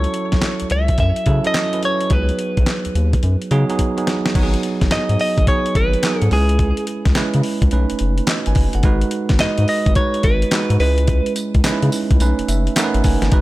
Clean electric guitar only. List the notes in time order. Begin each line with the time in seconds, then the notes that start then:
Already playing: C#5
0.72 E5
1.00 E5
1.47 D#5
1.85 C#5
2.13 B4
4.92 D#5
5.21 D#5
5.48 C#5
5.76 B4
6.21 A4
6.33 G#4
9.41 D#5
9.69 D#5
9.96 C#5
10.24 B4
10.80 B4